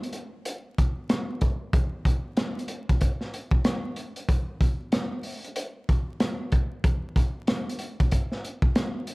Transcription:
0.03 closed hi-hat
0.13 closed hi-hat
0.45 closed hi-hat
0.78 kick, closed hi-hat
1.09 cross-stick, snare, closed hi-hat
1.41 kick, closed hi-hat
1.73 kick, closed hi-hat
2.05 kick, closed hi-hat
2.37 cross-stick, snare, closed hi-hat
2.59 closed hi-hat
2.68 closed hi-hat
2.89 kick, closed hi-hat
3.01 kick, closed hi-hat
3.21 snare
3.34 closed hi-hat
3.51 kick
3.65 cross-stick, snare, closed hi-hat
3.96 closed hi-hat
4.16 closed hi-hat
4.29 kick, closed hi-hat
4.61 kick, closed hi-hat
4.92 cross-stick, snare, closed hi-hat
5.23 open hi-hat
5.44 closed hi-hat
5.56 closed hi-hat
5.89 kick, closed hi-hat
6.20 cross-stick, snare, closed hi-hat
6.52 kick, closed hi-hat
6.84 kick, closed hi-hat
7.16 kick, closed hi-hat
7.47 cross-stick, snare, closed hi-hat
7.69 closed hi-hat
7.79 closed hi-hat
8.00 kick, closed hi-hat
8.11 kick, closed hi-hat
8.32 snare
8.44 closed hi-hat
8.62 kick
8.76 cross-stick, snare, closed hi-hat
9.07 closed hi-hat

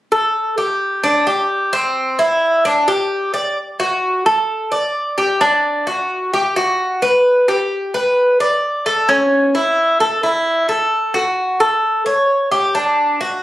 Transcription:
0.12 A4
0.58 G4
1.04 D4
1.27 G4
1.73 C4
2.19 E4
2.65 D4
2.88 G4
3.34 D5
3.80 F#4
4.26 A4
4.72 D5
5.18 G4
5.41 D4
5.87 F#4
6.33 G4
6.56 F#4
7.02 B4
7.48 G4
7.94 B4
8.40 D5
8.86 A4
9.09 C#4
9.55 E4
10.00 A4
10.23 E4
10.69 A4
11.14 F#4
11.60 A4
12.06 C#5
12.51 G4
12.75 D4
13.21 F#4

